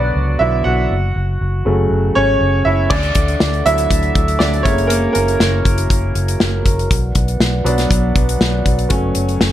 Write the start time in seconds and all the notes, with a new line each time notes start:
Already playing: B1 D3 F#3 B3 D4 F#4 B4 D5 F#5
0.15 C#2
0.39 B1 D3 F#3 B3 E4 E5
0.64 B1 F#4 F#5
0.91 F#1
1.16 F#1
1.41 F#1
1.65 F#1 C#3 F#3 A3
1.91 F#1
2.15 G#1 C#4 C#5
2.41 F#1
2.65 F#1 E4 E5
2.90 D2 D4 A4 D5 E5 F#5, kick, crash
3.03 closed hi-hat
3.15 D2, kick, closed hi-hat
3.28 closed hi-hat
3.40 D2, snare
3.54 closed hi-hat
3.66 D2 F#3 D4 E4 E5, closed hi-hat
3.78 closed hi-hat
3.90 D2, kick, closed hi-hat
4.03 closed hi-hat
4.15 D2, kick, closed hi-hat
4.28 closed hi-hat
4.39 D2 D4 D5, snare
4.53 closed hi-hat
4.63 F#1 G#3 A#3 C#4 E4 F#4 A#4 C#5, kick, closed hi-hat
4.78 closed hi-hat
4.87 A#3 A#4, closed hi-hat
5.13 F#1 A#3 A#4, closed hi-hat
5.28 closed hi-hat
5.40 F#1, snare
5.65 F#1, kick, closed hi-hat
5.78 closed hi-hat
5.90 F#1, kick, closed hi-hat
6.15 F#1, closed hi-hat
6.28 closed hi-hat
6.40 F#1, snare
6.66 F#1, kick, closed hi-hat
6.79 closed hi-hat
6.91 B1 B3 B4 D5 F#5, kick, closed hi-hat
7.15 B1, kick, closed hi-hat
7.28 closed hi-hat
7.40 B1, snare
7.64 B1 F#3 B3 D4, closed hi-hat
7.78 snare, closed hi-hat
7.91 B1, kick, closed hi-hat
8.15 B1, kick, closed hi-hat
8.29 closed hi-hat
8.41 B1, snare
8.65 B1, kick, closed hi-hat
8.79 closed hi-hat
8.89 F#1 F#3 A3 C#4 F#4 A4 C#5, kick, closed hi-hat
9.15 F#1, closed hi-hat
9.29 closed hi-hat
9.41 F#1, snare